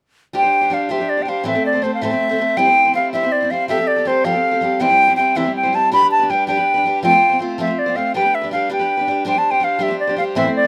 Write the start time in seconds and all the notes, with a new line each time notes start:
0.33 G3 D4 G4 C5 G5
0.42 D4 G4 C5
0.61 D4 G4 C5
0.70 G3 D4 G4 C5 F5
0.89 G3 D4 G4 C5 E5
0.98 D4 G4 C5
1.09 D5
1.17 D4 G4 C5
1.22 G3 G5
1.27 D4 G4 C5 F5
1.44 A2 E3 A3 C4 A4 C5 E5
1.53 A3 C4 A4 C5
1.66 D5
1.73 A3 C4 A4 C5
1.82 A3 C4 A4 C5
1.94 F5
2.02 A2 E3 A3 C4 A4 C5 E5
2.10 A3 C4 A4 C5
2.29 A3 C4 A4 C5
2.38 A3 C4 A4 C5
2.57 G3 C4 E4 C5 G5
2.65 C4 E4 C5
2.85 C4 E4 C5
2.94 G3 C4 E4 C5 F5
3.13 G3 C4 E4 C5 E5
3.23 C4 E4 C5
3.32 D5
3.41 C4 E4 C5
3.50 G3 C4 E4 C5 F5
3.68 F3 G3 C4 G4 A4 E5
3.78 C4 G4 A4
3.87 D5
3.96 C4 G4 A4
4.05 G3 C4 G4 A4 C5
4.24 F3 G3 C4 G4 A4 F5
4.33 C4 G4 A4
4.51 C4 G4 A4
4.61 G3 C4 G4 A4
4.80 C3 E3 G3 C4 E4 C5 G5
4.88 G3 C4 E4 C5
5.07 G3 C4 E4 C5
5.16 G3 C4 E4 C5 G5
5.35 C3 E3 G3 C4 E4 C5 E5
5.44 G3 C4 E4 C5
5.56 G5
5.63 G3 C4 E4 C5
5.73 G3 C4 E4 C5 A5
5.92 G3 D4 G4 B4 B5
6.01 D4 G4 B4
6.11 A5
6.19 D4 G4 B4
6.25 A5
6.30 G3 D4 G4 B4 G5
6.47 G3 D4 G4 B4 G5
6.57 D4 G4 B4
6.74 D4 G4 B4
6.84 G3 D4 G4 B4
7.03 F3 A3 C4 F4 C5 G5
7.11 C4 F4 C5
7.30 C4 F4 C5
7.39 A3 C4 F4 C5
7.58 F3 A3 C4 F4 C5 E5
7.67 C4 F4 C5
7.79 D5
7.86 C4 F4 C5
7.95 A3 C4 F4 C5 F5
8.14 G3 D4 G4 B4 G5
8.23 D4 G4 B4
8.35 E5
8.42 D4 G4 B4
8.51 G3 D4 G4 B4 F5
8.70 G3 D4 G4 B4 G5
8.79 D4 G4 B4
8.97 D4 G4 B4
9.07 G3 D4 G4 B4
9.25 G3 D4 G4 C5 G5
9.34 D4 G4 C5 A5
9.51 D4 G4 C5 G5
9.60 G3 D4 G4 C5
9.64 F5
9.79 G3 D4 G4 C5 E5
9.88 D4 G4 C5
10.00 D5
10.07 D4 G4 C5
10.17 G3 D4 G4 C5 F5
10.35 A2 E3 A3 C4 E4 C5 E5
10.44 A3 C4 E4 C5
10.56 D5
10.62 E4 C5